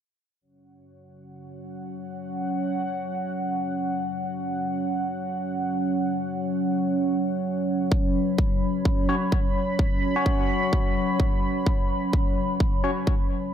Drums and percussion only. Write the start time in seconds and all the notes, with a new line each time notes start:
7.92 kick
8.38 kick
8.85 kick
9.32 kick
9.79 kick
10.26 kick
10.73 kick
11.20 kick
11.66 kick
12.13 kick
12.60 kick
13.07 kick